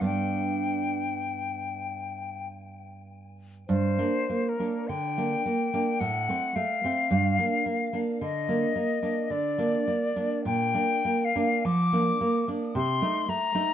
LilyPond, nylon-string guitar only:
\new Staff \with { instrumentName = "Nylon-string guitar" } { \time 3/4 \key g \major \tempo 4 = 52 <g, b d'>2. | \key g \minor g,16 <bes d'>16 bes16 <bes d'>16 d16 <bes d'>16 bes16 <bes d'>16 a,16 <a c'>16 a16 <a c'>16 | g,16 <bes d'>16 bes16 <bes d'>16 d16 <bes d'>16 bes16 <bes d'>16 d16 <bes d'>16 bes16 <bes d'>16 | bes,16 <bes d'>16 bes16 <bes d'>16 f16 <bes d'>16 bes16 <bes d'>16 c16 <a ees'>16 a16 <a ees'>16 | }